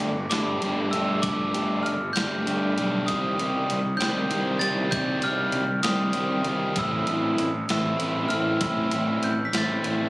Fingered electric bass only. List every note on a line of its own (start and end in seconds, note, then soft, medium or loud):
0.00 0.27 G1 medium
0.30 0.57 G1 medium
0.61 0.88 G1 medium
0.92 1.19 G1 medium
1.24 1.50 G1 medium
1.54 1.81 G1 medium
1.86 2.12 G1 medium
2.15 2.42 G1 medium
2.46 2.73 G1 medium
2.78 3.04 B1 medium
3.08 3.35 C2 loud
3.39 3.66 C2 medium
3.70 3.96 C2 medium
4.00 4.27 C2 medium
4.32 4.58 C2 medium
4.62 4.88 C2 medium
4.93 5.19 C2 loud
5.23 5.50 C2 medium
5.53 5.80 C2 medium
5.85 6.12 C2 medium
6.15 6.42 C2 medium
6.46 6.73 C2 medium
6.76 7.03 A1 medium
7.08 7.35 A1 medium
7.39 7.65 A1 medium
7.70 7.96 A1 medium
8.00 8.27 A1 medium
8.30 8.57 A1 medium
8.61 8.88 A1 loud
8.90 9.17 A1 medium
9.22 9.49 A1 medium
9.52 9.79 A1 medium
9.84 10.09 A1 medium